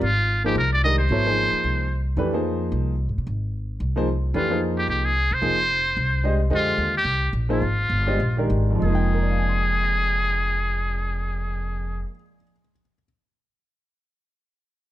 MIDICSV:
0, 0, Header, 1, 5, 480
1, 0, Start_track
1, 0, Tempo, 270636
1, 20, Time_signature, 4, 2, 24, 8
1, 12020, Tempo, 280767
1, 13940, Tempo, 304260
1, 15380, Tempo, 318810
1, 24569, End_track
2, 0, Start_track
2, 0, Title_t, "Muted trumpet"
2, 0, Program_c, 0, 59
2, 58, Note_on_c, 0, 65, 96
2, 747, Note_off_c, 0, 65, 0
2, 812, Note_on_c, 0, 67, 93
2, 982, Note_off_c, 0, 67, 0
2, 1025, Note_on_c, 0, 70, 88
2, 1265, Note_off_c, 0, 70, 0
2, 1295, Note_on_c, 0, 74, 88
2, 1464, Note_off_c, 0, 74, 0
2, 1483, Note_on_c, 0, 75, 100
2, 1732, Note_off_c, 0, 75, 0
2, 1744, Note_on_c, 0, 72, 108
2, 3589, Note_off_c, 0, 72, 0
2, 7721, Note_on_c, 0, 65, 86
2, 8156, Note_off_c, 0, 65, 0
2, 8475, Note_on_c, 0, 67, 90
2, 8652, Note_off_c, 0, 67, 0
2, 8690, Note_on_c, 0, 67, 82
2, 8955, Note_on_c, 0, 68, 89
2, 8982, Note_off_c, 0, 67, 0
2, 9464, Note_on_c, 0, 72, 108
2, 9491, Note_off_c, 0, 68, 0
2, 11362, Note_off_c, 0, 72, 0
2, 11613, Note_on_c, 0, 65, 88
2, 12281, Note_off_c, 0, 65, 0
2, 12353, Note_on_c, 0, 67, 102
2, 12948, Note_off_c, 0, 67, 0
2, 13304, Note_on_c, 0, 65, 93
2, 14849, Note_off_c, 0, 65, 0
2, 15401, Note_on_c, 0, 68, 81
2, 20239, Note_off_c, 0, 68, 0
2, 24569, End_track
3, 0, Start_track
3, 0, Title_t, "Grand piano"
3, 0, Program_c, 1, 0
3, 786, Note_on_c, 1, 53, 75
3, 794, Note_on_c, 1, 58, 68
3, 806, Note_on_c, 1, 63, 59
3, 811, Note_on_c, 1, 68, 66
3, 825, Note_on_c, 1, 72, 76
3, 962, Note_off_c, 1, 53, 0
3, 966, Note_off_c, 1, 58, 0
3, 972, Note_off_c, 1, 63, 0
3, 975, Note_off_c, 1, 68, 0
3, 981, Note_off_c, 1, 72, 0
3, 1486, Note_on_c, 1, 56, 45
3, 1488, Note_on_c, 1, 51, 53
3, 1499, Note_on_c, 1, 67, 50
3, 1502, Note_on_c, 1, 62, 47
3, 1510, Note_on_c, 1, 70, 60
3, 1725, Note_off_c, 1, 56, 0
3, 1726, Note_off_c, 1, 51, 0
3, 1731, Note_off_c, 1, 67, 0
3, 1733, Note_off_c, 1, 62, 0
3, 1737, Note_off_c, 1, 70, 0
3, 1963, Note_on_c, 1, 54, 60
3, 1965, Note_on_c, 1, 59, 54
3, 1966, Note_on_c, 1, 64, 61
3, 1980, Note_on_c, 1, 69, 58
3, 1983, Note_on_c, 1, 73, 74
3, 2203, Note_off_c, 1, 54, 0
3, 2204, Note_off_c, 1, 59, 0
3, 2205, Note_off_c, 1, 64, 0
3, 2212, Note_off_c, 1, 69, 0
3, 2213, Note_off_c, 1, 73, 0
3, 2241, Note_on_c, 1, 53, 60
3, 2241, Note_on_c, 1, 58, 51
3, 2247, Note_on_c, 1, 63, 55
3, 2252, Note_on_c, 1, 72, 59
3, 2262, Note_on_c, 1, 68, 58
3, 3269, Note_off_c, 1, 53, 0
3, 3269, Note_off_c, 1, 58, 0
3, 3272, Note_off_c, 1, 63, 0
3, 3274, Note_off_c, 1, 72, 0
3, 3279, Note_off_c, 1, 68, 0
3, 3846, Note_on_c, 1, 52, 63
3, 3861, Note_on_c, 1, 57, 61
3, 3867, Note_on_c, 1, 62, 64
3, 3873, Note_on_c, 1, 67, 59
3, 3878, Note_on_c, 1, 71, 74
3, 4104, Note_off_c, 1, 52, 0
3, 4111, Note_off_c, 1, 57, 0
3, 4114, Note_off_c, 1, 62, 0
3, 4118, Note_off_c, 1, 67, 0
3, 4120, Note_off_c, 1, 71, 0
3, 4135, Note_on_c, 1, 53, 60
3, 4139, Note_on_c, 1, 58, 55
3, 4145, Note_on_c, 1, 63, 56
3, 4154, Note_on_c, 1, 68, 54
3, 4156, Note_on_c, 1, 72, 68
3, 5175, Note_off_c, 1, 53, 0
3, 5177, Note_off_c, 1, 58, 0
3, 5181, Note_off_c, 1, 63, 0
3, 5185, Note_off_c, 1, 68, 0
3, 5186, Note_off_c, 1, 72, 0
3, 7020, Note_on_c, 1, 53, 71
3, 7032, Note_on_c, 1, 58, 64
3, 7032, Note_on_c, 1, 63, 64
3, 7042, Note_on_c, 1, 68, 60
3, 7048, Note_on_c, 1, 72, 84
3, 7197, Note_off_c, 1, 53, 0
3, 7204, Note_off_c, 1, 58, 0
3, 7204, Note_off_c, 1, 63, 0
3, 7208, Note_off_c, 1, 68, 0
3, 7212, Note_off_c, 1, 72, 0
3, 7698, Note_on_c, 1, 52, 62
3, 7705, Note_on_c, 1, 57, 56
3, 7715, Note_on_c, 1, 62, 56
3, 7721, Note_on_c, 1, 67, 60
3, 7729, Note_on_c, 1, 71, 72
3, 7950, Note_off_c, 1, 52, 0
3, 7954, Note_off_c, 1, 57, 0
3, 7958, Note_off_c, 1, 62, 0
3, 7962, Note_off_c, 1, 67, 0
3, 7966, Note_off_c, 1, 71, 0
3, 7982, Note_on_c, 1, 53, 58
3, 7986, Note_on_c, 1, 58, 55
3, 7993, Note_on_c, 1, 63, 54
3, 8001, Note_on_c, 1, 68, 52
3, 8004, Note_on_c, 1, 72, 65
3, 9020, Note_off_c, 1, 53, 0
3, 9022, Note_off_c, 1, 58, 0
3, 9025, Note_off_c, 1, 63, 0
3, 9029, Note_off_c, 1, 68, 0
3, 9031, Note_off_c, 1, 72, 0
3, 9606, Note_on_c, 1, 53, 62
3, 9612, Note_on_c, 1, 58, 53
3, 9613, Note_on_c, 1, 63, 57
3, 9617, Note_on_c, 1, 68, 58
3, 9625, Note_on_c, 1, 72, 69
3, 9865, Note_off_c, 1, 53, 0
3, 9868, Note_off_c, 1, 58, 0
3, 9868, Note_off_c, 1, 63, 0
3, 9870, Note_off_c, 1, 68, 0
3, 9874, Note_off_c, 1, 72, 0
3, 11063, Note_on_c, 1, 56, 60
3, 11063, Note_on_c, 1, 62, 57
3, 11076, Note_on_c, 1, 67, 53
3, 11080, Note_on_c, 1, 75, 72
3, 11090, Note_on_c, 1, 72, 54
3, 11314, Note_off_c, 1, 56, 0
3, 11314, Note_off_c, 1, 62, 0
3, 11320, Note_off_c, 1, 67, 0
3, 11322, Note_off_c, 1, 75, 0
3, 11327, Note_off_c, 1, 72, 0
3, 11529, Note_on_c, 1, 56, 64
3, 11535, Note_on_c, 1, 50, 61
3, 11547, Note_on_c, 1, 67, 64
3, 11549, Note_on_c, 1, 75, 72
3, 11551, Note_on_c, 1, 72, 67
3, 12234, Note_off_c, 1, 56, 0
3, 12237, Note_off_c, 1, 50, 0
3, 12243, Note_off_c, 1, 67, 0
3, 12244, Note_off_c, 1, 75, 0
3, 12245, Note_off_c, 1, 72, 0
3, 13237, Note_on_c, 1, 53, 70
3, 13250, Note_on_c, 1, 58, 65
3, 13252, Note_on_c, 1, 63, 64
3, 13252, Note_on_c, 1, 68, 65
3, 13257, Note_on_c, 1, 72, 77
3, 13422, Note_off_c, 1, 53, 0
3, 13429, Note_off_c, 1, 58, 0
3, 13429, Note_off_c, 1, 68, 0
3, 13430, Note_off_c, 1, 63, 0
3, 13432, Note_off_c, 1, 72, 0
3, 14206, Note_on_c, 1, 56, 65
3, 14208, Note_on_c, 1, 62, 58
3, 14212, Note_on_c, 1, 67, 59
3, 14217, Note_on_c, 1, 72, 60
3, 14228, Note_on_c, 1, 75, 72
3, 14384, Note_off_c, 1, 56, 0
3, 14385, Note_off_c, 1, 62, 0
3, 14387, Note_off_c, 1, 67, 0
3, 14389, Note_off_c, 1, 72, 0
3, 14394, Note_off_c, 1, 75, 0
3, 14681, Note_on_c, 1, 51, 64
3, 14691, Note_on_c, 1, 56, 57
3, 14698, Note_on_c, 1, 67, 59
3, 14699, Note_on_c, 1, 62, 57
3, 14713, Note_on_c, 1, 70, 70
3, 15202, Note_on_c, 1, 41, 61
3, 15279, Note_on_c, 1, 53, 58
3, 15328, Note_off_c, 1, 56, 0
3, 15336, Note_off_c, 1, 51, 0
3, 15345, Note_off_c, 1, 62, 0
3, 15345, Note_off_c, 1, 67, 0
3, 15352, Note_on_c, 1, 56, 61
3, 15353, Note_off_c, 1, 70, 0
3, 15431, Note_on_c, 1, 58, 58
3, 15504, Note_on_c, 1, 63, 58
3, 15585, Note_on_c, 1, 79, 65
3, 15879, Note_on_c, 1, 70, 47
3, 15992, Note_on_c, 1, 74, 39
3, 16119, Note_on_c, 1, 77, 38
3, 16248, Note_on_c, 1, 80, 38
3, 16401, Note_on_c, 1, 84, 36
3, 16567, Note_on_c, 1, 87, 36
3, 16743, Note_on_c, 1, 91, 36
3, 16923, Note_on_c, 1, 94, 35
3, 20108, Note_off_c, 1, 41, 0
3, 20181, Note_off_c, 1, 53, 0
3, 20251, Note_off_c, 1, 56, 0
3, 20329, Note_off_c, 1, 58, 0
3, 20402, Note_off_c, 1, 63, 0
3, 20483, Note_off_c, 1, 79, 0
3, 20716, Note_off_c, 1, 70, 0
3, 20829, Note_off_c, 1, 74, 0
3, 20957, Note_off_c, 1, 77, 0
3, 21085, Note_off_c, 1, 80, 0
3, 21238, Note_off_c, 1, 84, 0
3, 21404, Note_off_c, 1, 87, 0
3, 21580, Note_off_c, 1, 91, 0
3, 21761, Note_off_c, 1, 94, 0
3, 24569, End_track
4, 0, Start_track
4, 0, Title_t, "Upright bass"
4, 0, Program_c, 2, 32
4, 26, Note_on_c, 2, 32, 85
4, 934, Note_off_c, 2, 32, 0
4, 981, Note_on_c, 2, 36, 85
4, 1891, Note_off_c, 2, 36, 0
4, 1928, Note_on_c, 2, 32, 79
4, 2640, Note_off_c, 2, 32, 0
4, 2903, Note_on_c, 2, 36, 80
4, 3812, Note_off_c, 2, 36, 0
4, 3842, Note_on_c, 2, 41, 72
4, 4761, Note_off_c, 2, 41, 0
4, 4820, Note_on_c, 2, 36, 84
4, 5414, Note_off_c, 2, 36, 0
4, 5479, Note_on_c, 2, 44, 57
4, 5617, Note_off_c, 2, 44, 0
4, 5641, Note_on_c, 2, 48, 67
4, 5778, Note_off_c, 2, 48, 0
4, 5794, Note_on_c, 2, 32, 80
4, 6697, Note_off_c, 2, 32, 0
4, 6741, Note_on_c, 2, 36, 84
4, 7651, Note_off_c, 2, 36, 0
4, 7703, Note_on_c, 2, 41, 77
4, 8612, Note_off_c, 2, 41, 0
4, 8656, Note_on_c, 2, 36, 80
4, 9364, Note_off_c, 2, 36, 0
4, 9421, Note_on_c, 2, 48, 67
4, 9605, Note_off_c, 2, 48, 0
4, 9615, Note_on_c, 2, 29, 78
4, 10529, Note_off_c, 2, 29, 0
4, 10584, Note_on_c, 2, 36, 84
4, 11494, Note_off_c, 2, 36, 0
4, 11532, Note_on_c, 2, 41, 72
4, 12002, Note_off_c, 2, 41, 0
4, 12022, Note_on_c, 2, 39, 78
4, 12470, Note_off_c, 2, 39, 0
4, 12480, Note_on_c, 2, 36, 83
4, 12945, Note_off_c, 2, 36, 0
4, 12964, Note_on_c, 2, 34, 86
4, 13432, Note_off_c, 2, 34, 0
4, 13452, Note_on_c, 2, 32, 71
4, 13922, Note_off_c, 2, 32, 0
4, 13932, Note_on_c, 2, 31, 84
4, 14388, Note_off_c, 2, 31, 0
4, 14408, Note_on_c, 2, 34, 81
4, 14872, Note_off_c, 2, 34, 0
4, 14881, Note_on_c, 2, 32, 84
4, 15363, Note_off_c, 2, 32, 0
4, 15387, Note_on_c, 2, 29, 78
4, 20224, Note_off_c, 2, 29, 0
4, 24569, End_track
5, 0, Start_track
5, 0, Title_t, "Muted upright bass strokes"
5, 2700, Note_on_c, 9, 29, 34
5, 2877, Note_off_c, 9, 29, 0
5, 24569, End_track
0, 0, End_of_file